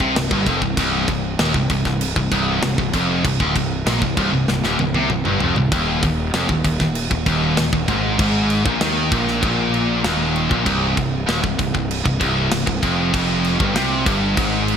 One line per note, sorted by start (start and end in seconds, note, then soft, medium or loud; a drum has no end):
0.00 0.14 C2 loud
0.00 0.14 C3 loud
0.00 kick medium
0.15 0.30 C1 medium
0.15 0.30 C2 medium
0.15 snare loud
0.15 crash medium
0.31 0.45 G1 medium
0.31 0.45 G2 loud
0.31 kick loud
0.46 0.61 F1 medium
0.46 0.61 F2 loud
0.46 kick medium
0.46 crash medium
0.62 0.76 C1 medium
0.62 0.78 C2 medium
0.62 kick medium
0.77 1.06 C1 loud
0.77 1.08 C2 loud
0.77 kick loud
0.77 crash medium
1.08 1.37 C1 medium
1.08 1.33 C2 medium
1.08 kick medium
1.08 crash medium
1.39 1.53 D#1 medium
1.39 1.54 D#2 loud
1.39 snare loud
1.39 crash medium
1.54 1.69 C1 medium
1.54 1.70 C2 medium
1.54 kick medium
1.70 1.84 C1 medium
1.70 1.85 C2 medium
1.70 kick medium
1.70 crash medium
1.85 2.14 C1 medium
1.85 2.11 C2 medium
1.85 kick medium
1.85 snare soft
2.01 crash medium
2.16 2.31 C1 medium
2.16 2.31 C2 medium
2.16 kick medium
2.32 2.60 C1 loud
2.32 2.61 C2 loud
2.32 kick medium
2.32 crash medium
2.62 2.77 C1 medium
2.62 2.78 C2 medium
2.62 snare loud
2.62 crash medium
2.78 2.92 C1 medium
2.78 2.93 C2 medium
2.78 kick medium
2.93 3.22 F1 medium
2.93 3.23 F2 loud
2.93 kick medium
2.93 crash medium
3.25 3.39 C1 medium
3.25 3.40 C2 medium
3.25 kick medium
3.25 crash medium
3.40 3.54 D1 medium
3.40 3.55 D2 medium
3.40 kick medium
3.56 3.84 C1 medium
3.56 3.80 C2 medium
3.56 kick medium
3.56 crash medium
3.87 4.01 A#1 medium
3.87 4.01 A#2 loud
3.87 snare loud
3.87 crash medium
4.01 4.16 C1 medium
4.01 4.16 C2 medium
4.01 kick medium
4.17 4.32 C1 medium
4.17 4.32 C2 medium
4.17 kick loud
4.17 crash medium
4.33 4.47 C1 medium
4.33 4.48 C2 medium
4.48 4.62 C1 medium
4.48 4.64 C2 medium
4.48 snare medium
4.63 4.78 D#1 medium
4.63 4.79 D#2 medium
4.63 snare medium
4.79 4.93 C1 medium
4.79 4.95 C2 medium
4.79 high tom medium
4.94 5.09 C2 loud
4.94 5.10 C3 loud
4.94 high tom medium
5.10 5.24 C1 medium
5.10 5.26 C2 medium
5.10 mid tom medium
5.25 5.40 G1 medium
5.25 5.40 G2 medium
5.25 mid tom medium
5.40 5.56 F1 medium
5.40 5.56 F2 loud
5.40 floor tom loud
5.56 5.71 C1 medium
5.56 5.72 C2 medium
5.56 floor tom medium
5.72 6.01 D#1 medium
5.72 6.02 D#2 loud
5.72 kick loud
5.72 crash medium
6.03 6.32 D#1 medium
6.03 6.28 D#2 medium
6.03 kick loud
6.03 crash medium
6.34 6.48 F1 medium
6.34 6.49 F2 loud
6.34 snare loud
6.34 crash medium
6.49 6.63 D#1 medium
6.49 6.64 D#2 medium
6.49 kick medium
6.64 6.79 D#1 medium
6.64 6.80 D#2 medium
6.64 kick medium
6.64 crash medium
6.80 7.09 D#1 medium
6.80 7.05 D#2 medium
6.80 kick medium
6.80 snare soft
6.95 crash medium
7.11 7.25 D#1 medium
7.11 7.25 D#2 medium
7.11 kick medium
7.26 7.55 D#1 medium
7.26 7.56 D#2 loud
7.26 kick medium
7.26 crash medium
7.57 7.72 D#1 medium
7.57 7.72 D#2 medium
7.57 snare loud
7.57 crash medium
7.73 7.87 D#1 medium
7.73 7.87 D#2 medium
7.73 kick medium
7.88 8.17 G#1 medium
7.88 8.17 G#2 loud
7.88 kick medium
7.88 crash medium
8.18 8.62 G#1 loud
8.18 8.64 G#2 loud
8.18 kick loud
8.18 crash medium
8.50 crash medium
8.65 8.80 A#1 medium
8.65 8.80 A#2 loud
8.65 kick loud
8.81 9.09 D#2 medium
8.81 9.11 D#3 loud
8.81 snare loud
8.81 crash medium
9.12 9.40 A#1 medium
9.12 9.41 A#2 loud
9.12 kick loud
9.12 crash medium
9.28 snare soft
9.42 10.01 A#1 medium
9.42 10.03 A#2 medium
9.42 kick loud
9.42 crash medium
9.74 crash medium
10.04 10.48 D#1 medium
10.04 10.50 D#2 loud
10.04 snare loud
10.04 crash medium
10.36 crash medium
10.50 10.65 A#1 loud
10.50 10.65 A#2 loud
10.50 kick loud
10.65 10.95 C1 loud
10.65 10.96 C2 loud
10.65 kick medium
10.65 crash medium
10.97 11.26 C1 medium
10.97 11.22 C2 medium
10.97 kick medium
10.97 crash medium
11.27 11.43 D#1 medium
11.27 11.42 D#2 loud
11.27 snare loud
11.27 crash medium
11.43 11.58 C1 medium
11.43 11.57 C2 medium
11.43 kick medium
11.59 11.73 C1 medium
11.59 11.73 C2 medium
11.59 kick medium
11.59 crash medium
11.74 12.03 C1 medium
11.74 11.99 C2 medium
11.74 kick medium
11.91 crash medium
12.05 12.20 C1 medium
12.05 12.19 C2 medium
12.05 kick medium
12.20 12.50 C1 loud
12.20 12.50 C2 loud
12.20 kick medium
12.20 crash medium
12.51 12.66 C1 medium
12.51 12.65 C2 medium
12.51 snare loud
12.51 crash medium
12.66 12.82 C1 medium
12.66 12.82 C2 medium
12.66 kick medium
12.82 13.11 F1 medium
12.82 13.12 F2 loud
12.82 kick medium
12.82 crash medium
13.13 13.57 F1 loud
13.13 13.59 F2 loud
13.13 kick loud
13.13 crash medium
13.44 crash medium
13.59 13.74 G1 loud
13.59 13.74 G2 loud
13.59 kick loud
13.74 14.04 C2 medium
13.74 14.05 C3 loud
13.74 snare loud
13.74 crash medium
14.05 14.35 G1 medium
14.05 14.36 G2 medium
14.05 kick loud
14.05 crash medium
14.36 14.77 G#1 medium
14.36 14.77 G#2 loud
14.36 kick loud
14.36 crash medium
14.68 crash medium